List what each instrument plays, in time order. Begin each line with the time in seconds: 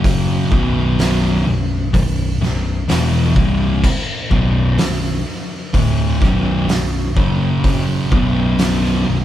Already playing: picked electric bass F#1, distorted electric guitar F#2 C#3 F#3
0.04 kick, open hi-hat
0.51 picked electric bass B0, distorted electric guitar B1 F#2 B2, kick
0.99 snare, open hi-hat
1.46 picked electric bass B0, distorted electric guitar B1 F#2
1.93 picked electric bass B0, distorted electric guitar B1 F#2, kick, open hi-hat
2.41 picked electric bass B0, distorted electric guitar B1 F#2, snare
2.88 picked electric bass E1, distorted electric guitar E2 B2 E3, snare, open hi-hat
3.36 picked electric bass C1, distorted electric guitar C2 G2 C3, kick
3.84 kick, crash
4.30 picked electric bass B0, distorted electric guitar B1 F#2 B2, kick
4.78 picked electric bass B0, distorted electric guitar B1 F#2, snare, open hi-hat
5.74 picked electric bass D1, distorted electric guitar D2 A2 D3, kick, open hi-hat
6.21 picked electric bass B0, distorted electric guitar B1 F#2 B2, kick, snare
6.69 picked electric bass B0, distorted electric guitar B1 F#2, snare, open hi-hat
7.16 picked electric bass F#1, distorted electric guitar F#2 C#3 F#3, kick
7.64 kick, open hi-hat
8.12 picked electric bass B0, distorted electric guitar B1 F#2 B2, kick
8.59 snare, open hi-hat
8.84 snare
9.06 picked electric bass B0, distorted electric guitar B1 F#2